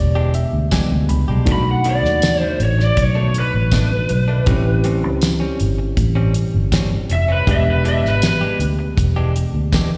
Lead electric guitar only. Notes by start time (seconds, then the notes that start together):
1.52 B5
1.71 F#5
1.89 D5
2.40 C5
2.63 C#5
2.84 D5
3.02 C#5
3.39 B4
7.13 E5
7.32 B4
7.51 E5
7.70 B4
7.88 E5
8.08 B4
8.27 B4